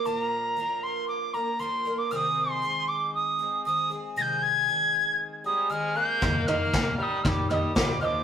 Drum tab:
SD |--------|--------|--------|--o---o-|
FT |--------|--------|--------|oo--oo--|
BD |--------|--------|--------|o-o-o-o-|